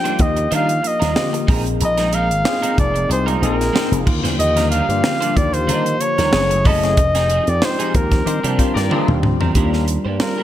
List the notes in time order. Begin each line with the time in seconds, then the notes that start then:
Already playing: F3 A#3 D4 F4 G4 G5
0.04 G3 A#3 D4 D#4 F4 G4 C5, closed hi-hat
0.19 D#2 D#5, muted clean electric guitar stroke, kick, closed hi-hat
0.36 muted clean electric guitar stroke, closed hi-hat
0.51 D#3 G3 D4 F4 A#4, closed hi-hat
0.55 F5
0.69 muted clean electric guitar stroke, closed hi-hat
0.83 muted clean electric guitar stroke, closed hi-hat
0.87 D#5
1.00 D#2 G3 D4 F4 A#4, snare, closed hi-hat
1.15 D3 A#3 F4 G4, muted clean electric guitar stroke, snare
1.33 muted clean electric guitar stroke, closed hi-hat
1.46 A#1 G#3 C4 D#4 F4 G#4 A#4, kick, open hi-hat
1.66 muted clean electric guitar stroke, closed hi-hat
1.80 A#1, muted clean electric guitar stroke, closed hi-hat
1.85 D#5
1.97 G#3 C4 D#4 A#4, snare, closed hi-hat
2.12 G#3 C4 D#4 A#4 F5, closed hi-hat
2.30 G#1, muted clean electric guitar stroke, closed hi-hat
2.45 C4 D#4 F4 G#4, muted clean electric guitar stroke, snare
2.62 G#3 C4 D#4 A#4, closed hi-hat
2.77 F1 D5, muted clean electric guitar stroke, kick, closed hi-hat
2.94 muted clean electric guitar stroke, closed hi-hat
3.08 C2 C4 D#4 F4 G#4, muted clean electric guitar stroke, closed hi-hat
3.12 C5
3.26 G#3 C4 D#4 F4 G#4 A#4, closed hi-hat
3.41 A#1 G#3 C4 D#4 F4 G#4 A#4, closed hi-hat
3.61 snare, closed hi-hat
3.73 G#3 C4 D#4 F4 A#4 C5, snare
3.91 F1, muted clean electric guitar stroke, closed hi-hat
4.06 D#2 D3 F3 A#3 F4 G4, muted clean electric guitar stroke, kick, crash
4.24 E2 G3 D4 F4 C5, snare, closed hi-hat
4.39 D#2 D#5, muted clean electric guitar stroke, closed hi-hat
4.57 G3 D4 F4 A#4, snare, closed hi-hat
4.71 G3 D4 F4 A#4 F5, closed hi-hat
4.88 G2 A#3 D4 F4 G4, closed hi-hat
5.03 muted clean electric guitar stroke, snare
5.21 G3 A#3 D4 F4 G4 C5, closed hi-hat
5.36 D#2 D5, muted clean electric guitar stroke, kick, closed hi-hat
5.53 C5, muted clean electric guitar stroke, closed hi-hat
5.67 D#3 G3 D4 F4 A#4, closed hi-hat
5.86 muted clean electric guitar stroke, closed hi-hat
6.01 C#5, muted clean electric guitar stroke, closed hi-hat
6.18 D#2 G3 D4 F4 A#4, snare, closed hi-hat
6.33 F#1 F#3 A3 C#4 E4 G#4, muted clean electric guitar stroke, snare
6.50 muted clean electric guitar stroke, closed hi-hat
6.65 F#1 F#3 C#4 E4 A4 D#5, kick, open hi-hat
6.83 A3 C#4 E4 G#4, muted clean electric guitar stroke, snare, closed hi-hat
6.97 F1 F3 C4 D#4 G4, muted clean electric guitar stroke, kick, closed hi-hat
7.15 F3 C4 D#4 G#4, snare, closed hi-hat
7.30 F3 C4 D#4 G#4, closed hi-hat
7.47 F2 D5, muted clean electric guitar stroke, closed hi-hat
7.62 G#3 C4 D#4 F4 C5, muted clean electric guitar stroke, snare
7.70 G4
7.79 F3 C4 D#4 G#4, closed hi-hat
7.94 D#2 A#4, muted clean electric guitar stroke, kick, closed hi-hat
8.11 muted clean electric guitar stroke, kick, snare, closed hi-hat
8.25 D#3 G3 A#3 C4 D4 F4 G4 C5, muted clean electric guitar stroke, closed hi-hat
8.43 C3 F3 G3 C4 D4 F4 G4, closed hi-hat
8.58 F3 G3 C4 D4 F4 G4, kick, closed hi-hat
8.74 G2 G4 A#4 D5, snare, closed hi-hat
8.90 F3 G3 C4 D4 F4 A#4, high tom
9.08 D#2, muted clean electric guitar stroke, mid tom
9.23 D2, muted clean electric guitar stroke, mid tom
9.40 E2 F3 C4 D4 A#4, floor tom
9.54 D#2 G3 A#3 D4 F4 G4 A#4 G5, kick, closed hi-hat
9.73 snare
9.87 muted clean electric guitar stroke, closed hi-hat
10.05 G2 A#3 D4 G4 C5
10.19 G3 A#3 D4 F4 A#4, muted clean electric guitar stroke, snare, closed hi-hat
10.38 A#3 D4 G4 A#4